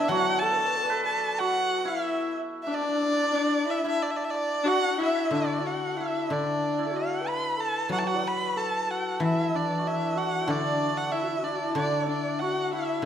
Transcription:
Already playing: D3 A3 B3 D4 E4
0.08 F#3 F#4 F#5
0.39 A4 A5
0.43 A4
0.52 B4
0.57 A4
0.67 B4
0.76 A4
0.83 B4 D5
0.90 A4 B4
1.05 A4 A5
1.39 F#4 F#5
1.85 E4 E5
1.89 E4
2.63 D4 E5
2.68 D4
2.73 D4 D5
2.82 D4
2.89 D4
2.95 D4
3.02 D4
3.12 D4
3.23 D4
3.33 D4
3.66 E4
3.70 E5
3.84 E4
3.88 E5
4.02 D5
4.11 E5
4.16 D5
4.24 E5
4.30 D5
4.64 D4 F#4
4.68 F#5
4.98 E4
5.03 E5
5.31 D3 D4
5.35 D5
5.61 F#4
5.66 F#5
5.97 E4 E5
6.29 D3 D4 D5
6.79 E4
6.86 A4
6.92 F#4
6.96 F#5
7.22 B4
7.27 B4 B5
7.47 B4
7.56 A4 A5
7.89 F#3 F#4 F#5
7.97 E4 A5
8.04 F#4 F#5
8.16 D5
8.24 B4 B5
8.56 A4 A5
8.82 A4
8.88 F#4 F#5
9.20 E3 E4 E5
9.54 D4 D5
9.79 F#4
9.85 E4 E5
10.15 F#4 F#5
10.41 E4
10.46 D3 D4 D5
10.97 F#5
11.11 E4 E5
11.23 F#4
11.28 E4
11.38 F#4
11.43 D4 E4 D5
11.51 F#4
11.60 E4
11.75 D3 D4 D5
12.02 E4
12.06 D4 D5
12.39 F#4 F#5
12.73 E4 E5
12.98 D3 E4

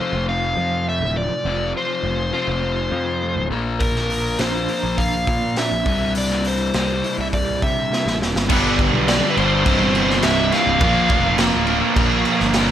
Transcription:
Already playing: F2 F3 A3 C5
0.00 F2 C3 F4
0.13 F1
0.29 C4 F5
0.57 F2 F3
0.88 A3 E5
1.01 D1
1.17 F3 D5
1.45 F1 F2 C3 F3
1.76 F4 C5
2.03 F1 A3
2.33 F2 C3 F3 F4 C5
2.48 F1
2.63 C4
2.92 F2 F3
3.23 A3
3.36 D1
3.51 A#1 A#2 F3 A#3
3.80 A#2 A#4, kick, open hi-hat
3.96 snare
4.10 A#4, open hi-hat
4.39 A#1 A#2 F3 A#3 D4 C5, snare, open hi-hat
4.68 A#4, open hi-hat
4.83 A#1
4.98 F4 F5, kick, open hi-hat
5.27 A#2 A#3, kick, open hi-hat
5.56 D4 E5, snare, open hi-hat
5.72 A#1
5.86 C2 G2 C3, kick, open hi-hat
6.15 C2 D5, open hi-hat
6.30 snare
6.45 E4 C5, open hi-hat
6.73 C2 G2 C3, snare, open hi-hat
7.04 E4, open hi-hat
7.18 C2 E5
7.33 G3 D5, kick, open hi-hat
7.62 G2 C3 E5, kick, open hi-hat
7.92 C3, snare
8.06 A1, snare
8.21 E1 G2, snare
8.35 G1, snare
8.49 G1 G2 D3 G3 B3 D4 G4, kick, crash
8.79 kick, crash
8.93 B1
9.08 G2 D3 G3 D5, snare, crash
9.31 B4
9.36 G1 G2 D3 G3 B3 D4 G4 C5, crash
9.66 C1 C2 G2 C3 G3 E4, kick, crash
9.80 G1
9.95 crash
10.11 snare
10.22 C1 C2 G2 C3 E5, snare, crash
10.52 C2 G2 C3 G3 E4 F5, snare, crash
10.67 C1
10.80 A#1 A#2 F3 A#3 D4 F4 A#4, kick, crash
11.09 F1, kick, crash
11.38 A#2 F3 A#3, snare, crash
11.54 D1
11.67 A#2 F3 A#3 D4 F4 A#4, crash
11.96 A#1 A#2 F3 A#3, kick, crash
12.25 crash
12.40 G1, snare
12.53 A#2 F3 A#3 D4 F4 A#4, snare, crash

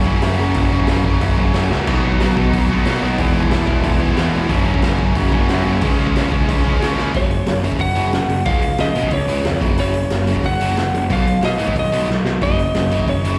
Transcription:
0.05 F#1 F#2 C#3 F#3 A#3 C#4, kick
0.22 F#2 C#3 F#3 A#3 C#4, snare, open hi-hat
0.37 F#1 F#2 C#3 F#3 A#3 C#4
0.54 F#1 F#2 C#3 F#3 A#3 C#4, kick, open hi-hat
0.71 F#1 F#2 C#3 F#3 A#3 C#4
0.80 kick
0.87 F#1 F#2 C#3 F#3 A#3 C#4, snare, open hi-hat
1.04 F#1 F#2 C#3 F#3 A#3 C#4, kick
1.20 F#1 F#2 C#3 F#3 A#3 C#4, kick, open hi-hat
1.36 F#1 F#2 C#3 F#3 A#3 C#4, kick
1.54 F#2 C#3 F#3 A#3 C#4, snare, open hi-hat
1.70 C#2 F#2 C#3 F#3 A#3 C#4, snare
1.86 B1 B2 F#3 B3 D#4, kick, crash
1.91 B3
2.04 B1 B2 F#3 B3 D#4
2.12 kick
2.20 B1 B2 F#3 B3 D#4, snare, open hi-hat
2.36 B1 B2 F#3 B3 D#4, kick
2.53 B1 B2 F#3 B3 D#4, kick, open hi-hat
2.69 B1 B2 F#3 B3 D#4, kick
2.84 B2 F#3 B3 D#4, snare, open hi-hat
3.01 B1 B2 F#3 B3 D#4
3.18 E1 E2 B2 E3 G#3 B3 E4, kick, open hi-hat
3.33 E1 E2 B2 E3 G#3 B3 E4
3.43 kick
3.50 E1 E2 B2 E3 G#3 B3 E4, snare, open hi-hat
3.66 E1 E2 B2 E3 G#3 B3 E4, kick
3.82 E1 E2 B2 E3 G#3 B3 E4, kick, open hi-hat
3.98 E1 E2 B2 E3 G#3 B3 E4, kick
4.03 E2
4.15 E2 B2 E3 G#3 B3 E4, snare, open hi-hat
4.19 E3
4.32 E1 E2 B2 E3 G#3 B3 E4
4.48 F#1 F#2 C#3 F#3 A#3 C#4, kick, open hi-hat
4.65 F#1 F#2 C#3 F#3 A#3 C#4
4.74 kick
4.82 F#1 F#2 C#3 F#3 A#3 C#4, snare, open hi-hat
4.99 F#1 F#2 C#3 F#3 A#3 C#4, kick
5.15 F#1 F#2 C#3 F#3 A#3 C#4, kick, open hi-hat
5.32 F#1 F#2 C#3 F#3 A#3 C#4, kick
5.49 F#2 C#3 F#3 A#3 C#4, snare, open hi-hat
5.65 F#1 F#2 C#3 F#3 A#3 C#4
5.81 C#2 C#3 F3 G#3 C#4, kick, open hi-hat
5.99 C#2 C#3 F3 G#3 C#4
6.07 kick
6.15 C#2 C#3 F3 G#3 C#4, snare, open hi-hat
6.31 C#2 C#3 F3 G#3 C#4, kick
6.48 C#2 C#3 F3 G#3 C#4, kick, open hi-hat
6.65 C#2 C#3 F3 G#3 C#4, kick
6.80 C#3 F3 G#3 C#4, snare, open hi-hat
6.96 C#2 C#3 F3 G#3 C#4, snare
7.12 F#1 F#2 C#3 F#3, kick, open hi-hat
7.17 C#5
7.30 F#2 C#3, open hi-hat
7.46 F#1 F#2 C#3, snare, open hi-hat
7.63 F#2 C#3 F#3, open hi-hat
7.72 kick
7.78 F#1 F#2 C#3 F#5, kick, open hi-hat
7.95 F#1 F#2 C#3 F#3, open hi-hat
8.12 F#1 F#2 C#3, snare, open hi-hat
8.29 F#1 F#2 C#3, open hi-hat
8.45 C#2 C#3 F3 G#3 F5, kick, open hi-hat
8.62 C#3 F3, open hi-hat
8.78 C#3 F3 D#5, snare, open hi-hat
8.95 B2 C#3 F3 G#3, open hi-hat
9.03 kick
9.11 C#2 C#3 F3 C#5, kick, open hi-hat
9.28 C#2 C#3 F3 G#3, open hi-hat
9.44 F2 C#3 F3, snare, open hi-hat
9.60 F#1 F#2 C#3 F#3, kick, open hi-hat
9.78 F#1 F#2 C#3 F#3 C#5, open hi-hat
9.94 F#2 C#3, open hi-hat
10.10 F#1 F#2 C#3, snare, open hi-hat
10.27 F#2 C#3 F#3, open hi-hat
10.36 kick
10.44 F#1 F#2 C#3 F#5, kick, open hi-hat
10.60 F#1 F#2 C#3 F#3, open hi-hat
10.77 F#1 F#2 C#3, snare, open hi-hat
10.95 F#1 F#2 C#3, open hi-hat
11.10 B1 B2 F#3 B3 F5, kick, open hi-hat
11.26 B2 F#3, open hi-hat
11.41 B2 F#3 D#5, snare, open hi-hat
11.58 G#2 B2 F#3 B3, open hi-hat
11.68 kick
11.76 B1 B2 F#3 D#5, kick, open hi-hat
11.92 B1 B2 F#3 B3, open hi-hat
12.09 B1 B2 F#3, snare
12.25 B1 B2 F#3, snare
12.42 F#1 F#2 C#3 F#3 D#5, kick, open hi-hat
12.58 F#2 C#3, open hi-hat
12.75 F#1 F#2 C#3, snare, open hi-hat
12.91 F#2 C#3 F#3, open hi-hat
12.99 kick
13.07 F#1 F#2 C#3 C#5, kick, open hi-hat
13.24 F#1 F#2 C#3 F#3, open hi-hat

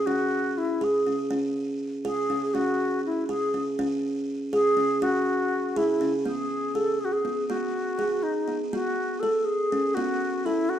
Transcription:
0.06 C#4 F#4
0.58 E4
0.81 G#4
1.07 C#4
1.31 C#4
2.05 G#4
2.30 C#4
2.47 G#4
2.54 C#4 F#4
3.06 E4
3.29 G#4
3.54 C#4
3.79 C#4
4.53 G#4
4.77 C#4
5.02 C#4 F#4
5.76 E4 G#4
6.01 C#4
6.25 B3 G#4
6.75 G#4 A4
7.00 G#4
7.05 F#4
7.13 G#4
7.25 B3
7.49 B3 F#4
7.99 G#4
8.23 D#4
8.48 B3
8.72 B3 F#4
9.20 A4
9.45 G#4
9.72 C#4
9.95 B3 F#4
10.46 E4 A4
10.69 F#4

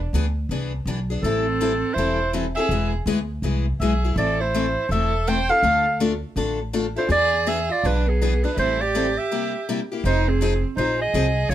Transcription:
0.13 D2 E3 B3 D4 G#4
0.49 C2 E3 B3 D4 G#4
0.86 B1 E3 B3 D4 G#4
1.10 B3 D4 G#4
1.22 A1 E3 G3 C4 E4 A4
1.61 E3 G3 C4 E4 A4
1.94 E1 E3 E4 C5
1.98 G3 C4 E4 A4
2.33 E3 G3 C4 E4 A4
2.55 E4 G#4 A4 E5
2.59 C4
2.69 E1 E3 G#3 B3 E4 G#4
3.06 D2 E3 G#3 B3 E4 G#4
3.42 C2 E3 G#3 B3 E4 G#4
3.80 B1 E3 G#3 B3 E4 G#4 E5
4.04 B3 E4 G#4
4.16 A1 E3 A3 C4 E4 A4 D5
4.40 E4 C5
4.55 E3 A3 C4 E4 A4
4.89 E1 E3 A3 C4 E4 A4 E5
5.27 E3 A3 C4 E4 A4 C5 G5
5.49 C4 E4 A4 F5
5.63 D2 D3 A3 D4 F4 A4
6.00 D3 A3 D4 F4 A4
6.36 A1 D3 A3 D4 F4 A4
6.73 D3 A3 D4 F4 A4
6.96 D4 E4 F4 A4 C5
7.09 E2 E3 B3 D4 G#4 D5
7.47 E3 B3 D4 G#4 E5
7.70 F4 D5
7.84 B1 E3 B3 D4 G#4 B4
8.07 B3 G#4
8.22 E3 B3 D4 G#4
8.44 B3 D4 G#4 B4
8.57 A1 E3 G3 C4 E4 A4 C5
8.81 G4 D5
8.95 E3 G3 C4 E4 A4
9.18 G4 E5
9.32 C3 G3 A#3 E4 G4
9.69 C3 G3 A#3 E4 G4
9.92 A#3 E4 G4
10.04 F1 F3 C4 D#4 G#4 C5
10.28 C4 G#4
10.41 F3 C4 D#4 G#4
10.77 A#1 F3 C4 D#4 G#4 C5
11.00 G#4 D#5
11.14 C2 F3 C4 D#4 G#4
11.49 C#2 C#3 G#3 F4 C#5

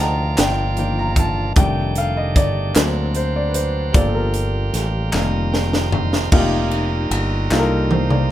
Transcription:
Already playing: F3 A#3 D4 D#4 F4 D5 D#5 F#5 G5 A5
0.00 D2 A#5
0.38 G1 G5, snare, clap, closed hi-hat
0.77 D#3 F3 A#3 D4 G5, closed hi-hat
0.99 A#5
1.11 A#5
1.16 A5, kick, closed hi-hat
1.56 F1 D#3 G3 A3 D4 G4 G5, kick, closed hi-hat
1.95 F5, closed hi-hat
2.17 D#5
2.36 G1 D5, kick, closed hi-hat
2.75 D2 D#3 F#3 A#3 C4 D4 A#4, snare, clap, closed hi-hat
2.81 F#3
3.15 C5, closed hi-hat
3.36 D5
3.48 B4
3.54 C5, closed hi-hat
3.93 G1 F3 G3 A#3 F4 G4 A4 D5, kick, closed hi-hat
4.08 A4
4.15 A#4
4.34 closed hi-hat
4.73 A1, snare, closed hi-hat
5.11 F1 D#3 G3 A#3 D#4 F4 A4, snare, clap
5.18 A#4
5.52 G5, snare
5.73 snare
5.92 C5, floor tom
6.13 snare
6.31 F1 G3 A#3 D#4 F4 G4 A#4, kick, crash
6.71 ride bell
7.11 G1, ride bell
7.51 C2 A#3 D#4 F4 A4, snare, clap
7.59 A#4
7.91 C5, high tom
8.10 D5, mid tom

